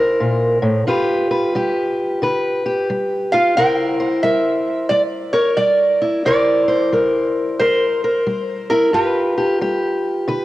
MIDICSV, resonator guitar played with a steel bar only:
0, 0, Header, 1, 2, 480
1, 0, Start_track
1, 0, Tempo, 672646
1, 622, Time_signature, 4, 2, 24, 8
1, 7456, End_track
2, 0, Start_track
2, 0, Title_t, "Resonator guitar played with a steel bar"
2, 0, Program_c, 0, 25
2, 2370, Note_on_c, 0, 77, 94
2, 2546, Note_on_c, 0, 79, 92
2, 2549, Note_off_c, 0, 77, 0
2, 2997, Note_off_c, 0, 79, 0
2, 3017, Note_on_c, 0, 76, 93
2, 3487, Note_off_c, 0, 76, 0
2, 3490, Note_on_c, 0, 74, 87
2, 3575, Note_off_c, 0, 74, 0
2, 3802, Note_on_c, 0, 73, 80
2, 3970, Note_off_c, 0, 73, 0
2, 3973, Note_on_c, 0, 74, 81
2, 4430, Note_off_c, 0, 74, 0
2, 4467, Note_on_c, 0, 74, 80
2, 5417, Note_off_c, 0, 74, 0
2, 5420, Note_on_c, 0, 72, 80
2, 6205, Note_off_c, 0, 72, 0
2, 6208, Note_on_c, 0, 70, 76
2, 6370, Note_off_c, 0, 70, 0
2, 6380, Note_on_c, 0, 71, 70
2, 7311, Note_off_c, 0, 71, 0
2, 7456, End_track
0, 0, End_of_file